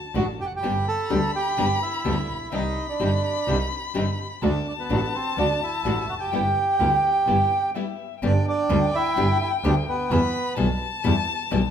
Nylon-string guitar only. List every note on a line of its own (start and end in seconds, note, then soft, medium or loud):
0.15 0.24 D3 medium
0.15 0.24 A3 medium
0.15 0.24 D4 medium
0.15 0.24 F#4 medium
0.63 0.71 D3 medium
0.63 0.72 G3 medium
0.63 0.72 B3 medium
0.63 0.72 D4 medium
0.63 0.72 G4 medium
1.10 1.19 D3 medium
1.10 1.19 G3 medium
1.10 1.19 B3 medium
1.10 1.19 D4 medium
1.10 1.19 G4 medium
1.57 1.67 D3 medium
1.57 1.67 G3 medium
1.57 1.67 B3 medium
1.57 1.67 D4 medium
1.57 1.67 G4 medium
2.04 2.14 D3 medium
2.04 2.14 G3 medium
2.04 2.14 B3 medium
2.04 2.14 D4 medium
2.04 2.14 G4 medium
2.52 2.61 C3 medium
2.52 2.61 D#3 medium
2.52 2.62 G3 medium
2.52 2.62 D4 medium
2.52 2.62 G4 medium
3.00 3.09 C3 medium
3.00 3.09 D#3 medium
3.00 3.09 G3 medium
3.00 3.10 D4 medium
3.00 3.09 G4 medium
3.47 3.57 C3 medium
3.47 3.57 D#3 medium
3.47 3.57 G3 medium
3.47 3.57 D4 medium
3.47 3.57 G4 medium
3.94 4.04 C3 medium
3.94 4.04 D#3 medium
3.94 4.04 G3 medium
3.94 4.04 D4 medium
3.94 4.04 G4 medium
4.42 4.51 D3 medium
4.42 4.52 A3 medium
4.42 4.52 D4 medium
4.42 4.52 F#4 medium
4.90 4.99 D3 medium
4.90 4.99 A3 medium
4.90 4.99 D4 medium
4.90 4.99 F#4 medium
5.37 5.46 D3 medium
5.37 5.46 A3 medium
5.37 5.47 D4 medium
5.37 5.47 F#4 medium
5.84 5.94 D3 medium
5.84 5.94 A3 medium
5.84 5.94 D4 medium
5.84 5.94 F#4 medium
6.32 6.41 G3 medium
6.32 6.42 B3 medium
6.32 6.42 E4 medium
6.80 6.89 G3 medium
6.80 6.89 B3 medium
6.80 6.89 E4 medium
7.27 7.36 G3 medium
7.27 7.36 B3 medium
7.27 7.36 E4 medium
7.75 7.84 G3 medium
7.75 7.84 B3 medium
7.75 7.84 E4 medium
8.22 8.31 D3 medium
8.22 8.31 G3 medium
8.22 8.31 B3 medium
8.22 8.32 D4 medium
8.22 8.31 G4 medium
8.69 8.78 D3 medium
8.69 8.78 G3 medium
8.69 8.78 B3 medium
8.69 8.78 D4 medium
8.69 8.78 G4 medium
9.16 9.25 D3 medium
9.16 9.26 G3 medium
9.16 9.26 B3 medium
9.16 9.26 D4 loud
9.16 9.26 G4 medium
9.64 9.73 D3 medium
9.64 9.73 G3 medium
9.64 9.73 B3 medium
9.64 9.73 D4 medium
9.64 9.73 G4 loud
10.11 10.20 B2 medium
10.11 10.20 E3 medium
10.11 10.20 G3 medium
10.11 10.20 B3 medium
10.11 10.20 E4 medium
10.56 10.66 B2 medium
10.56 10.66 E3 medium
10.56 10.66 G3 medium
10.56 10.66 B3 medium
10.56 10.66 E4 medium
11.04 11.13 B2 medium
11.04 11.13 E3 medium
11.04 11.13 G3 loud
11.04 11.13 B3 medium
11.04 11.13 E4 medium
11.51 11.60 B2 medium
11.51 11.60 E3 medium
11.51 11.60 G3 medium
11.51 11.60 B3 loud
11.51 11.60 E4 loud